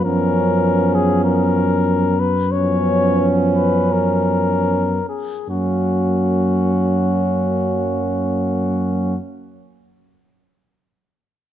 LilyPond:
<<
  \new Staff \with { instrumentName = "Cornet" } { \time 4/4 \key fis \major \tempo 4 = 39 ais'8. gis'16 ais'8. b'16 cis''8. b'16 ais'8. gis'16 | fis'1 | }
  \new Staff \with { instrumentName = "Flugelhorn" } { \time 4/4 \key fis \major cis'4.~ cis'16 r16 cis'4. r8 | cis'1 | }
  \new Staff \with { instrumentName = "Trombone section" } { \time 4/4 \key fis \major b2 b4. r8 | ais1 | }
  \new Staff \with { instrumentName = "Trombone" } { \clef bass \time 4/4 \key fis \major eis4.~ eis16 r16 eis4. r8 | fis1 | }
  \new Staff \with { instrumentName = "Tuba" } { \clef bass \time 4/4 \key fis \major fis,2.~ fis,8 r8 | fis,1 | }
>>